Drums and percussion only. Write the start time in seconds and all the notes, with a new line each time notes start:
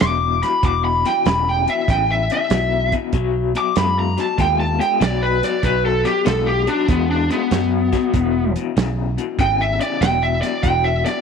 0.00 snare, closed hi-hat
0.43 snare, closed hi-hat
0.63 kick, closed hi-hat
1.05 snare, closed hi-hat
1.25 snare, closed hi-hat
1.67 closed hi-hat
1.88 kick, snare, closed hi-hat
2.30 closed hi-hat
2.50 snare, closed hi-hat
2.92 kick, closed hi-hat
3.13 kick, closed hi-hat
3.55 closed hi-hat
3.76 snare, closed hi-hat
4.18 snare, closed hi-hat
4.38 kick, snare, closed hi-hat
4.81 closed hi-hat
5.01 snare, closed hi-hat
5.43 snare, closed hi-hat
5.63 kick, closed hi-hat
6.05 snare, closed hi-hat
6.26 snare, closed hi-hat
6.67 closed hi-hat
6.88 kick, closed hi-hat
7.31 closed hi-hat
7.51 snare, closed hi-hat
7.93 kick, snare, closed hi-hat
8.14 kick, closed hi-hat
8.56 closed hi-hat
8.77 snare, closed hi-hat
9.18 closed hi-hat
9.39 kick, closed hi-hat
9.81 closed hi-hat
10.02 snare, closed hi-hat
10.43 snare, closed hi-hat
10.63 kick, closed hi-hat
11.06 snare, closed hi-hat